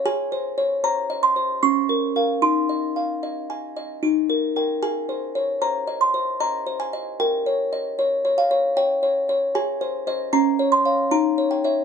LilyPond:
\new Staff \with { instrumentName = "Music box" } { \time 3/4 \key aes \major \tempo 4 = 76 << { aes''4 bes''8 c'''8 des'''4 | c'''2~ c'''8 r8 | aes''4 bes''8 c'''8 bes''8 aes''8 | g''4. f''8 g''4 |
aes''4 bes''8 c'''8 bes''8 g''8 | } \\ { \tuplet 3/2 { aes'8 c''8 des''8 c''8 ees''8 c''8 des'8 bes'8 <bes' f''>8 } | \tuplet 3/2 { ees'8 ees''8 f''8 ees''8 aes''8 ees''8 ees'8 bes'8 <bes' g''>8 } | \tuplet 3/2 { aes'8 c''8 des''8 c''8 ees''8 c''8 ees''8 c''8 ees''8 } | \tuplet 3/2 { bes'8 des''8 ees''8 des''8 des''8 des''8 des''8 des''8 des''8 } |
\tuplet 3/2 { aes'8 c''8 <c'' ees''>8 des'8 des''8 <des'' f''>8 ees'8 des''8 <des'' fes''>8 } | } >> }